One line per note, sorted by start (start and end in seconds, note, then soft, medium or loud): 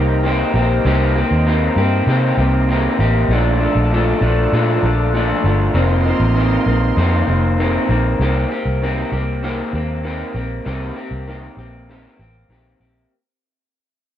0.00 0.43 C2 medium
0.00 0.24 A#3 soft
0.00 0.25 C4 soft
0.00 3.26 D#4 medium
0.00 0.25 G4 medium
0.00 3.27 C5 medium
0.00 3.27 G5 medium
0.00 5.70 A#5 medium
0.24 0.55 D#3 medium
0.24 0.55 A#3 medium
0.24 0.56 C4 medium
0.24 0.54 G4 medium
0.54 0.79 A#1 medium
0.54 0.85 A#3 medium
0.54 0.85 C4 medium
0.54 0.86 G4 medium
0.85 1.22 C2 loud
0.85 1.16 C3 loud
0.85 1.16 D#3 medium
0.85 1.16 A#3 loud
0.85 1.16 C4 loud
0.85 1.15 G4 loud
1.16 1.46 A#3 soft
1.16 1.47 C4 medium
1.16 1.47 G4 medium
1.31 1.68 D#2 medium
1.46 1.77 D#3 medium
1.46 1.77 A#3 medium
1.46 1.78 C4 medium
1.46 1.77 G4 medium
1.76 2.01 G2 medium
1.76 2.08 C4 medium
1.76 2.08 G4 medium
1.81 2.07 A#3 medium
2.07 2.32 C3 loud
2.07 2.38 C3 loud
2.07 2.38 D#3 medium
2.07 2.39 A#3 medium
2.07 2.39 C4 loud
2.07 2.37 G4 loud
2.37 2.87 C2 loud
2.37 2.69 A#3 soft
2.37 2.69 C4 medium
2.37 2.69 G4 medium
2.69 2.99 D#3 medium
2.69 3.00 A#3 medium
2.69 3.00 C4 medium
2.69 2.99 G4 medium
2.99 3.24 A1 medium
2.99 3.31 A#3 medium
2.99 3.31 C4 medium
2.99 3.30 G4 medium
3.28 3.66 A#1 loud
3.28 3.61 A#2 medium
3.28 3.61 F3 medium
3.28 3.60 A3 medium
3.28 3.59 D4 loud
3.28 8.15 F4 medium
3.28 5.72 D5 medium
3.28 5.72 A5 medium
3.60 3.92 F3 soft
3.60 3.92 A3 medium
3.60 3.91 D4 medium
3.75 4.12 A#1 loud
3.92 4.22 A#2 medium
3.92 4.23 F3 medium
3.92 4.21 A3 medium
3.92 4.20 D4 medium
4.21 4.46 A#1 medium
4.21 4.53 F3 medium
4.21 4.53 A3 medium
4.21 4.52 D4 medium
4.52 4.77 A#2 loud
4.52 4.84 A#2 medium
4.52 4.84 F3 medium
4.52 4.84 A3 medium
4.52 4.82 D4 medium
4.83 5.32 A#1 loud
4.83 5.13 F3 soft
4.83 5.14 A3 medium
4.83 5.14 D4 medium
5.14 5.44 A#2 medium
5.14 5.45 F3 medium
5.14 5.45 A3 medium
5.14 5.43 D4 medium
5.44 5.69 G1 medium
5.44 5.75 F3 soft
5.44 5.75 A3 medium
5.44 5.75 D4 medium
5.74 6.11 F1 loud
5.74 6.05 F2 medium
5.74 6.05 C3 loud
5.74 6.06 D#3 medium
5.74 6.06 A#3 loud
5.74 6.04 C4 loud
5.74 8.17 D#5 medium
5.74 8.17 A#5 medium
5.74 8.18 C6 medium
6.05 6.35 D#3 soft
6.05 6.36 A#3 medium
6.05 6.36 C4 medium
6.20 6.57 A1 medium
6.35 6.66 C3 medium
6.35 6.67 D#3 medium
6.35 6.67 A#3 medium
6.35 6.65 C4 medium
6.66 6.91 A#1 medium
6.66 6.97 D#3 medium
6.66 6.97 A#3 medium
6.66 6.97 C4 medium
6.97 7.28 F2 medium
6.97 7.22 F2 loud
6.97 7.28 C3 medium
6.97 7.28 D#3 medium
6.97 7.27 A#3 medium
6.97 7.26 C4 loud
7.27 7.77 F1 medium
7.27 7.58 D#3 soft
7.27 7.59 A#3 soft
7.27 7.58 C4 medium
7.58 7.89 C3 medium
7.58 7.90 D#3 medium
7.58 7.90 A#3 medium
7.58 7.88 C4 medium
7.89 8.13 A#1 medium
7.89 8.20 D#3 medium
7.89 8.20 A#3 medium
7.89 8.20 C4 medium
8.19 8.44 C2 loud
8.19 8.51 C3 medium
8.19 8.51 D#3 medium
8.19 8.51 A#3 medium
8.19 8.52 C4 medium
8.19 8.51 G4 medium
8.52 8.82 A#3 soft
8.52 8.82 C4 soft
8.52 8.82 G4 medium
8.65 9.02 C2 medium
8.82 9.12 D#3 medium
8.82 9.13 A#3 medium
8.82 9.13 C4 medium
8.82 9.11 G4 medium
9.12 9.61 C2 medium
9.12 9.43 A#3 soft
9.12 9.43 C4 soft
9.12 9.43 G4 medium
9.43 9.73 C3 medium
9.43 9.74 D#3 medium
9.43 9.74 A#3 medium
9.43 9.74 C4 medium
9.43 9.73 G4 medium
9.73 10.22 D#2 medium
9.73 10.04 A#3 soft
9.73 10.05 C4 soft
9.73 10.04 G4 soft
10.04 10.35 D#3 medium
10.04 10.35 A#3 medium
10.04 10.35 C4 medium
10.04 10.34 G4 medium
10.34 10.59 A#1 medium
10.34 10.65 A#3 soft
10.34 10.66 C4 medium
10.34 10.65 G4 medium
10.65 10.90 C2 medium
10.65 10.96 C3 medium
10.65 10.96 D#3 medium
10.65 10.96 A#3 medium
10.65 10.97 C4 medium
10.65 10.95 G4 loud
10.97 11.27 A#3 soft
10.97 11.28 C4 soft
10.97 11.27 G4 medium
11.11 11.48 C2 medium
11.27 11.58 D#3 medium
11.27 11.58 A#3 medium
11.27 11.59 C4 medium
11.27 11.57 G4 medium
11.57 12.06 A#1 medium
11.57 11.89 C4 soft
11.57 11.89 G4 soft
11.61 11.89 A#3 soft
11.89 12.19 C3 medium
11.89 12.19 D#3 medium
11.89 12.20 A#3 medium
11.89 12.20 C4 medium
11.89 12.18 G4 medium
12.19 12.43 A1 medium
12.19 12.50 A#3 soft
12.19 12.50 C4 soft
12.19 12.50 G4 soft
12.49 12.73 A#1 medium
12.49 12.80 D#3 medium
12.49 12.81 A#3 medium
12.49 12.81 C4 medium
12.49 12.79 G4 medium
12.80 13.04 A#1 medium
12.80 13.12 A#3 soft
12.80 13.12 C4 medium
12.80 13.11 G4 medium